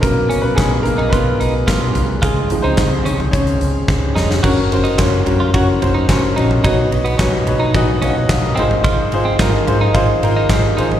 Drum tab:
CC |----------------|----------------|x---------------|----------------|
RD |----------------|----------------|--xxx-x-x-x-x-x-|x-xxx-x-x-x-x-x-|
HH |x-x-x-x-x-x-x-x-|x-x-x-x-xxx-----|----------------|----------------|
CP |----x-------x---|----x-----------|----x-------x---|----x-------x---|
SD |----o-------o---|----o-------o-oo|----o-------o---|----o-------o---|
FT |-------o------o-|--o----o--------|------o---o----o|------o---o----o|
BD |o---o---o---o---|o---o---o---o---|o---o---o---o---|o---o---o---o---|

CC |----------------|
RD |x-x-x-x-x-x-x-x-|
HH |----------------|
CP |----x-------x---|
SD |----o-------o---|
FT |------o--------o|
BD |o---o---o---o---|